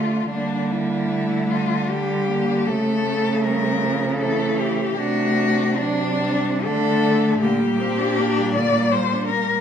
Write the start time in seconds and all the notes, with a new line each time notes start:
Already playing: D3 A3 F4
0.30 D3 G3 A#3 D4
0.72 E4
1.10 A3
1.50 F4
1.88 G3 G4
2.28 A#3
2.66 C#3 A3 A4
3.06 A3
3.43 G3 A#4
3.82 F3
4.18 E3 A3 A4
4.59 G4
4.98 C3 A3 D4 F#4
5.77 F#3 D4
6.23 G3
6.64 D3 A3 D4 A4
7.41 A#2 D3 A#3 G4
7.59 G3
7.78 A#3 C4
7.97 D4
8.18 A#3 D4
8.37 G3
8.54 D3 A#3 D5
8.75 G3
8.92 G3 A#3 C5
9.13 D4
9.28 A#3 A#4
9.48 G3